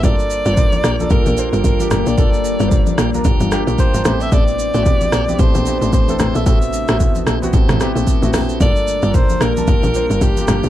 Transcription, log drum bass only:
X:1
M:4/4
L:1/16
Q:"Swing 16ths" 1/4=112
K:Gdor
V:1 name="Log drum bass" clef=bass
G,,,3 G,,,3 B,,,2 G,,, B,,,2 G,,, G,,,2 G,,, B,,, | G,,,3 G,,,3 B,,,2 G,,, G,,,2 B,,, z G,,, A,,,2 | A,,,3 A,,,3 B,,,2 A,,, B,,,2 A,,, A,,,2 A,,, B,,, | A,,,3 A,,,3 B,,,2 A,,, A,,,2 B,,, z A,,, B,,,2 |
G,,,3 G,,,3 B,,,2 G,,, B,,,2 G,,, G,,,2 G,,, B,,, |]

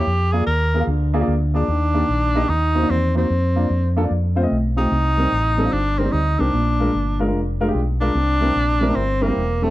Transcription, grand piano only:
X:1
M:4/4
L:1/16
Q:"Swing" 1/4=148
K:Bb
V:1 name="Grand piano"
z2 [B,F_Ad] z3 [B,FAB] [B,FAf] z2 [B,FAd] [B,FAd] z2 [B,FAd] z | z2 [B,EGd] z3 [B,EGe] [B,EG] z2 [B,E_Gc] [B,EGd] z2 [B,EGc] z | z2 [B,DFd] z3 [B,DFA] [B,Dd] z2 [A,CFc] [A,CFe] z2 [A,CFG] z | z2 [G,CEB] z3 [G,CEA] [G,CEF] z2 [G,CEB] [G,CEG] z2 [G,CEB] z |
z2 [_A,DFB] z3 [A,DFB] [A,DFB] z2 [A,DFB] [A,DFG] z2 [A,DFB] z | z2 [G,C=EB] z3 [G,CEB] [G,CEB] z2 [G,CEB] [G,CEc] z2 [G,CEA] z |]
V:2 name="Grand piano" clef=bass
z8 D,6 z2 | E,6 z2 E,6 z2 | z16 | C,6 z8 z2 |
B,,6 z8 z2 | C,6 z8 z2 |]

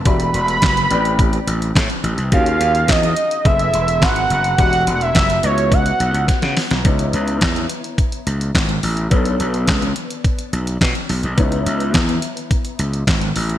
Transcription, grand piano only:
X:1
M:4/4
L:1/8
Q:1/4=106
K:Elyd
V:1 name="Grand piano"
[=A,F=G=d]3 [=CGBd]4- [CGBd] | [CFG^e]4 [B,G=A=e]4 | [=A,F=G=d]3 [B,EF^d]4- [B,EFd] | [K:C#m] [B,DEc]8 |
[B,=DAc]8 | [B,DEc]8 |]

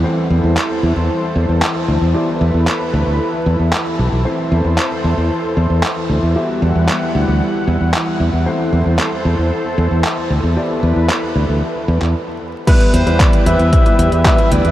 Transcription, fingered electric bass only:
X:1
M:4/4
L:1/16
Q:1/4=114
K:Em
V:1 name="Fingered electric bass" clef=bass
z2 E,, E,, z2 E,, E,, z2 E,, E,, z2 D,, E,, | z2 E,, E,, z2 D,, D,, z2 E,, E,, z2 B,,, B,,, | z2 E,, E,, z2 E,, E,, z2 E,, E,, z2 D,, E,, | z2 E,, E,, z2 D,, D,, z2 E,, E,, z2 E,, E,, |
z2 E,, E,, z2 E,, E,, z2 E,, E,, z2 D,, E,, | z2 E,, E,, z2 D,, D,, z2 E,, E,, z4 | z2 E,, E,, z2 E,, E,, z2 E,, E,, z2 D,, E,, |]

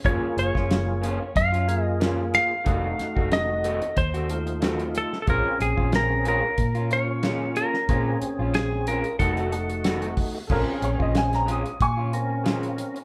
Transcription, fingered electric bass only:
X:1
M:4/4
L:1/16
Q:"Swing 16ths" 1/4=92
K:Bbm
V:1 name="Fingered electric bass" clef=bass
G,,, z G,,, G,,,4- G,,, G,,8 | F,,,2 z F,,,4- F,,, E,,8 | B,,, z B,,, B,,,4- B,,, B,,8 | B,,2 z B,,,4- B,,, F,,,8 |
B,,, z B,,, B,,,4- B,,, B,,8 |]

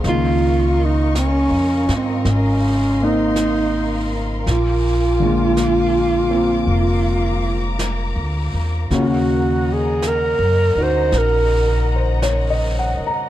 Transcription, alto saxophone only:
X:1
M:4/4
L:1/16
Q:"Swing" 1/4=54
K:Bbm
V:1 name="Alto saxophone"
F2 E2 D2 C2 D2 E4- E z | F12 z4 | G2 A2 B2 c2 B2 z6 |]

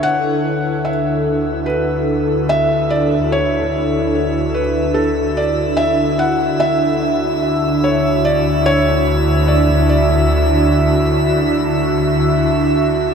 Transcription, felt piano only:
X:1
M:4/4
L:1/8
Q:1/4=73
K:Bm
V:1 name="Felt piano"
f2 e2 B2 e d | c3 B A d e f | e3 c d c2 d | d4 z4 |]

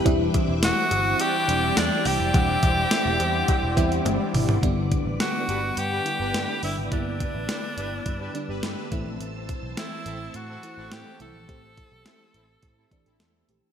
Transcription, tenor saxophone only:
X:1
M:4/4
L:1/8
Q:1/4=105
K:G
V:1 name="Tenor saxophone"
z2 F2 G2 D G- | G6 z2 | z2 F2 G3 E | D6 z2 |
z2 E2 F2 G A- | A6 z2 |]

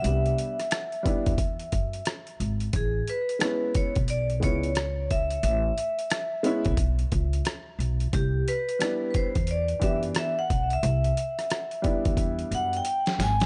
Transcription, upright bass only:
X:1
M:4/4
L:1/16
Q:"Swing 16ths" 1/4=89
K:A
V:1 name="Upright bass" clef=bass
=C,,2 z4 z E,,3 F,,2 z2 G,,,2 | A,,,2 z4 z B,,,3 C,,6 | A,,,2 z4 z B,,,3 C,,2 z2 B,,,2 | =C,,2 z4 z E,,3 F,,2 z2 B,,,2 |
=C,,2 z4 z E,,3 F,,2 z2 G,,,2 |]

